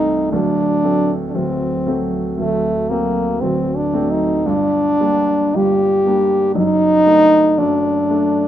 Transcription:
Already playing: grand piano C1 C2 A3 C4, french horn D#4
0.32 grand piano D1 D2, french horn D4
0.84 grand piano F#3 A3 C4
1.30 french horn D4
1.35 grand piano D1 D2, french horn C4
1.87 grand piano F#3 A3 C4
2.38 grand piano D1 D2, french horn A3
2.90 grand piano F#3 A3 C4, french horn A#3
3.41 grand piano D1 D2, french horn C4
3.77 french horn D4
3.93 grand piano F#3 A3 C4
4.11 french horn D#4
4.46 grand piano G1 G2, french horn D4
5.00 grand piano G3 A#3 D4
5.55 grand piano G1 G2, french horn G4
6.06 grand piano G3 A#3 D4
6.55 grand piano F#1 F#2, french horn D#4
7.06 grand piano A3 D4
7.58 grand piano F#1 F#2, french horn D4
8.10 grand piano A3 D4

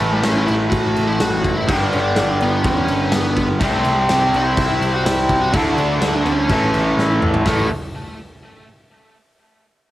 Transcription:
Already playing: overdriven electric guitar A2 E3 A3, lead electric guitar A3
0.00 picked electric bass A1
0.23 picked electric bass A1, lead electric guitar C#4, snare, crash
0.47 picked electric bass A1, lead electric guitar E4, crash
0.70 picked electric bass A1, lead electric guitar F#4, kick, crash
0.96 picked electric bass A1, crash
1.07 lead electric guitar E4
1.19 picked electric bass A1, lead electric guitar F#4, snare, crash
1.44 picked electric bass F#1, kick, crash
1.57 lead electric guitar E4
1.68 picked electric bass G1, overdriven electric guitar G2 D3 G3, lead electric guitar D4, kick, crash
1.93 picked electric bass G1, lead electric guitar D4, crash
2.16 picked electric bass G1, snare, crash
2.41 picked electric bass G1, lead electric guitar B3, crash
2.64 picked electric bass E2, lead electric guitar C#4, kick, crash
2.88 picked electric bass G1, crash
3.12 picked electric bass G1, lead electric guitar B3, snare, crash
3.37 picked electric bass G1, kick, crash
3.60 picked electric bass C2, overdriven electric guitar C3 G3 C4, lead electric guitar A3, kick, crash
3.85 picked electric bass C2, crash
4.09 picked electric bass C2, lead electric guitar C4, snare, crash
4.33 picked electric bass C2, lead electric guitar E4, crash
4.57 picked electric bass C2, kick, crash
4.81 picked electric bass C2, crash
4.94 lead electric guitar F#4
5.05 picked electric bass C2, lead electric guitar E4, snare, crash
5.29 picked electric bass C2, kick, crash
5.42 lead electric guitar F#4
5.52 picked electric bass D2, overdriven electric guitar D3 A3, lead electric guitar E4, kick, crash
5.56 overdriven electric guitar D4
5.77 picked electric bass D2, lead electric guitar D4, crash
6.01 picked electric bass D2, snare, crash
6.25 picked electric bass D2, lead electric guitar C#4, crash
6.48 picked electric bass A1, overdriven electric guitar A2 E3 A3, kick, crash
6.74 picked electric bass A1, crash
6.97 picked electric bass A1, snare
7.22 picked electric bass A1, mid tom
7.34 floor tom
7.46 picked electric bass A1, overdriven electric guitar A2 E3 A3, lead electric guitar A3, kick, snare, open hi-hat

